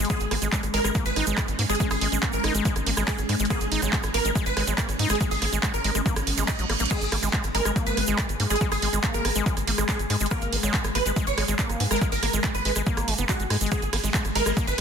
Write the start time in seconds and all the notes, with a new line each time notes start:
Already playing: G#3 G#4
0.05 closed hi-hat
0.10 G#3 B3 C#4 G#4, kick, cross-stick, shaker
0.20 G#1, closed hi-hat, shaker
0.31 G#1 A#3, cross-stick, open hi-hat
0.42 G#1 G#3, closed hi-hat, shaker
0.52 G#3, kick, clap, closed hi-hat, shaker
0.63 G#1, cross-stick, closed hi-hat, shaker
0.74 G#1 G#3 A#4, open hi-hat
0.84 G#1 G#3, cross-stick, closed hi-hat, shaker
0.95 A#3, kick, closed hi-hat, shaker
1.06 G#1 B4, closed hi-hat, shaker
1.16 G#1 D#4, cross-stick, open hi-hat
1.27 G#1 G#3, closed hi-hat, shaker
1.38 G#3, kick, cross-stick, clap, closed hi-hat, shaker
1.48 G#1, closed hi-hat, shaker
1.59 G#2 A#3, open hi-hat
1.69 G#1 G#3 G#4, cross-stick, closed hi-hat, shaker
1.75 closed hi-hat
1.80 G#3, kick, closed hi-hat, shaker
1.91 G#1 G#4, cross-stick, open hi-hat, shaker
2.01 G#1 G#3, open hi-hat
2.12 G#1 G#3, closed hi-hat, shaker
2.22 A#3, kick, cross-stick, clap, closed hi-hat, shaker
2.32 G#1 A#4, closed hi-hat, shaker
2.44 G#1 D#4, cross-stick, open hi-hat
2.55 G#1 G#3, closed hi-hat, shaker
2.65 G#3, kick, closed hi-hat, shaker
2.76 G#1, cross-stick, closed hi-hat, shaker
2.87 G#1 A#3, open hi-hat
2.97 G#1 G#3, cross-stick, closed hi-hat, shaker
3.08 G#3 G#4, kick, clap, closed hi-hat, shaker
3.18 G#1, closed hi-hat, shaker
3.29 G#2 G#3, cross-stick, open hi-hat
3.39 G#1 G#3, closed hi-hat, shaker
3.45 closed hi-hat
3.50 A#3 B3 G#4, kick, cross-stick, closed hi-hat, shaker
3.61 G#1, closed hi-hat, shaker
3.72 G#1 D#4, open hi-hat
3.82 G#1 F#3 G#3, cross-stick, closed hi-hat, shaker
3.93 G#3, kick, clap, closed hi-hat, shaker
4.03 G#1, cross-stick, closed hi-hat, shaker
4.14 G#1 A#3 A#4, open hi-hat
4.25 G#1 G#3, closed hi-hat, shaker
4.35 G#3, kick, cross-stick, closed hi-hat, shaker
4.46 G#1 B4, closed hi-hat, shaker
4.57 G#1 F#3 G#3, cross-stick, open hi-hat
4.67 G#1 F#3 G#3, closed hi-hat, shaker
4.78 A#3, kick, clap, closed hi-hat, shaker
4.89 G#1, cross-stick, closed hi-hat, shaker
4.99 G#2 D#4, open hi-hat
5.09 G#1 G#3 G#4, cross-stick, closed hi-hat, shaker
5.15 closed hi-hat
5.21 G#3, kick, closed hi-hat, shaker
5.31 G#1 G#4, open hi-hat, shaker
5.42 G#1 A#3, cross-stick, open hi-hat
5.53 G#1 G#3, closed hi-hat, shaker
5.63 G#3, kick, cross-stick, clap, closed hi-hat, shaker
5.74 G#1 A#4, closed hi-hat, shaker
5.84 G#1 G#3, open hi-hat
5.95 G#1 G#3, cross-stick, closed hi-hat, shaker
6.06 A#3, kick, closed hi-hat, reverse cymbal, shaker
6.16 G#1, cross-stick, closed hi-hat, shaker
6.27 G#1, open hi-hat
6.38 G#1 G#3, closed hi-hat, shaker
6.48 D#4 D#5, kick, cross-stick, clap, closed hi-hat, shaker
6.59 A#1 F#3, closed hi-hat, shaker
6.70 G#1 A#3, cross-stick, open hi-hat
6.79 A#1 A#3, closed hi-hat, shaker
6.86 closed hi-hat
6.91 G#3 B3 G#4, kick, cross-stick, closed hi-hat, crash, shaker
7.01 G#1, closed hi-hat, shaker
7.12 G#1 A#3, cross-stick, open hi-hat
7.23 G#1 G#3, closed hi-hat, shaker
7.33 G#3, kick, clap, closed hi-hat, shaker
7.44 G#1, cross-stick, closed hi-hat, shaker
7.55 G#1 G#3 A#4, open hi-hat
7.65 G#1 G#3, cross-stick, closed hi-hat, shaker
7.76 A#3, kick, closed hi-hat, shaker
7.87 G#1 B4, closed hi-hat, shaker
7.97 G#1 B3, cross-stick, open hi-hat
8.07 G#1 G#3, closed hi-hat, shaker
8.18 kick, cross-stick, clap, closed hi-hat, shaker
8.29 G#1, closed hi-hat, shaker
8.40 G#2 A#3, open hi-hat
8.50 G#1 G#3 G#4, cross-stick, closed hi-hat, shaker
8.56 closed hi-hat
8.61 G#3, kick, closed hi-hat, shaker
8.72 G#1 G#4, cross-stick, open hi-hat, shaker
8.82 G#1 G#3, open hi-hat
8.93 G#1 G#3, closed hi-hat, shaker
9.03 A#3, kick, cross-stick, clap, closed hi-hat, shaker
9.14 G#1 A#4, closed hi-hat, shaker
9.25 G#1 B3, cross-stick, open hi-hat
9.36 G#1 G#3, closed hi-hat, shaker
9.46 G#3, kick, closed hi-hat, shaker
9.57 G#1, cross-stick, closed hi-hat, shaker
9.67 G#1 A#3, open hi-hat
9.78 G#1 G#3, cross-stick, closed hi-hat, shaker
9.89 G#3 G#4, kick, clap, closed hi-hat, shaker
9.99 G#1, closed hi-hat, shaker
10.10 G#2 G#3, cross-stick, open hi-hat
10.20 G#1 G#3, closed hi-hat, shaker
10.26 closed hi-hat
10.31 A#3 B3 A#4, kick, cross-stick, shaker
10.41 G#1, closed hi-hat, shaker
10.53 G#1 B3, open hi-hat
10.63 G#1 F#3 G#3, cross-stick, closed hi-hat, shaker
10.74 G#3, kick, clap, closed hi-hat, shaker
10.84 G#1, cross-stick, closed hi-hat, shaker
10.95 G#1 A#3 B4, open hi-hat
11.06 G#1 G#3, closed hi-hat, shaker
11.16 G#3, kick, cross-stick, closed hi-hat, shaker
11.27 G#1 C#5, closed hi-hat, shaker
11.38 G#1 F#3 G#3, cross-stick, open hi-hat
11.48 G#1 F#3 G#3, closed hi-hat, shaker
11.59 A#3, kick, clap, closed hi-hat, shaker
11.70 G#1, cross-stick, closed hi-hat, shaker
11.80 G#2 B3, open hi-hat
11.91 G#1 G#3 A#4, cross-stick, closed hi-hat, shaker
11.96 closed hi-hat
12.01 G#3, kick, closed hi-hat, shaker
12.12 G#1 A#4, open hi-hat, shaker
12.23 G#1 A#3, cross-stick, open hi-hat
12.33 G#1 G#3, closed hi-hat, shaker
12.44 G#3, kick, cross-stick, clap, closed hi-hat, shaker
12.55 G#1 B4, closed hi-hat, shaker
12.65 G#1 G#3, open hi-hat
12.76 G#1 G#3, cross-stick, closed hi-hat, shaker
12.86 A#3, kick, closed hi-hat, shaker
12.97 G#1, cross-stick, closed hi-hat, shaker
13.08 G#1 G#3, open hi-hat
13.18 F#1 B3, closed hi-hat, shaker
13.29 G#3 F#4, kick, cross-stick, clap, closed hi-hat, shaker
13.40 G#1 G#3, closed hi-hat, shaker
13.50 G#2 G#3, cross-stick, open hi-hat
13.61 G#1 G#3, closed hi-hat, shaker
13.66 closed hi-hat
13.72 G#3 B3 G#4, kick, cross-stick, closed hi-hat, shaker
13.82 G#1, closed hi-hat, shaker
13.93 G#1 A#3, cross-stick, open hi-hat, ride
14.04 G#1 G#3, closed hi-hat, shaker
14.14 G#3, kick, clap, closed hi-hat, shaker
14.25 G#1, cross-stick, closed hi-hat, shaker
14.35 G#1 G#3 A#4, open hi-hat, ride
14.46 G#1 G#3, cross-stick, closed hi-hat, shaker
14.57 A#3, kick, closed hi-hat, shaker
14.67 G#1 B4, closed hi-hat, shaker